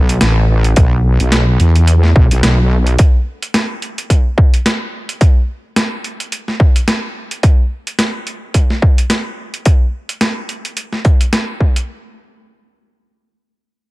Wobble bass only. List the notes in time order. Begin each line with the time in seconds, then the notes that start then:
Already playing: B1
0.21 A1
0.77 B1
1.20 B1
1.60 E2
2.16 B1
2.32 B1
2.43 B1